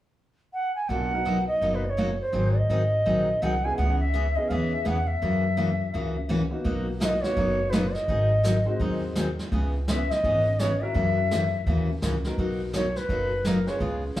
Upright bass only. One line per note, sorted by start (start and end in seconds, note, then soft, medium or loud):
0.89 1.47 B1 medium
1.61 2.19 F#1 medium
2.33 2.62 G#1 medium
2.69 3.00 G#1 medium
3.06 3.36 A#1 medium
3.42 3.72 C2 medium
3.78 4.35 C#2 medium
4.50 4.80 D#2 medium
4.87 5.17 E2 medium
5.22 5.79 F#2 medium
5.94 6.51 C#2 medium
6.65 7.22 B1 medium
7.36 7.94 F#1 medium
8.08 8.66 G#1 medium
8.80 9.37 D#2 medium
9.52 10.09 C#2 medium
10.24 10.81 G#1 medium
10.95 11.52 F#2 medium
11.66 11.97 D#2 medium
12.02 12.32 C#2 medium
12.38 12.95 B1 medium
13.09 13.66 F#1 medium
13.80 14.09 C#2 medium
14.16 14.20 C#2 medium